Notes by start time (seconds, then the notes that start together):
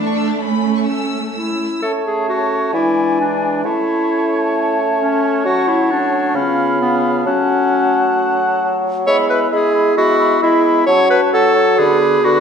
Already playing: A3 D4
0.07 C#6
0.18 E6
0.30 A6
0.41 C#4 B5
0.76 C#6
0.87 E6
1.34 E4 E6
1.82 A3 C#4 A4 C#5 A5
2.06 G#4
2.29 F#4
2.73 E3 G#3 D4 E4 D5 G#5
3.20 D4
3.64 A3 C#4 E4 C#5 A5
5.00 C#4
5.45 F#3 F#4
5.68 E4
5.91 D4
6.35 C#3 B3 C#4 F4 F5 B5
6.81 B3
7.25 F#3 A3 C#4 F#4 F#5 A5
9.05 G#3 B3 E4 C#5 E5 B5
9.29 B4 E5 B5
9.51 G#3 G#4 E5 B5
9.73 E5 B5
9.96 G#3 F#4 E5 B5
10.19 E5 B5
10.42 G#3 E4 E5 B5
10.64 E5 B5
10.86 F#3 C#4 F#4 C#5 A5
11.08 B4 C#5 A5
11.33 F#3 A4 C#5 A5
11.55 C#5 A5
11.78 D3 B3 G#4 B4 B5
12.01 B4 B5
12.24 D3 F#4 B4 B5